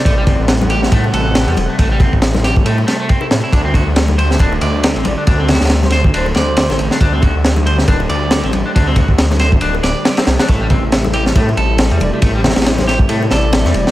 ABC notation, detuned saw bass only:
X:1
M:4/4
L:1/16
Q:"Swing 16ths" 1/4=138
K:Ador
V:1 name="Detuned saw bass" clef=bass
A,,,3 A,,,4- A,,, A,,2 A,,,3 E,, E,,, z | A,,,3 A,,,4- A,,, A,,2 z4 A,, z | D,,3 D,,4- D,, D,,,2 D,,3 A,,, A,,, z | D,,3 D,,4- D,, D,,,2 D,,3 A,,, A,,, z |
D,,3 D,,4- D,, D,,,2 D,,3 A,,, A,,, z | D,,3 D,,4- D,, D,,,2 D,,, z3 C,, z | A,,,3 A,,,4- A,,, A,,2 A,,,3 E,, E,,, z | A,,,3 A,,,4- A,,, A,,2 A,,,3 E,, E,,, z |]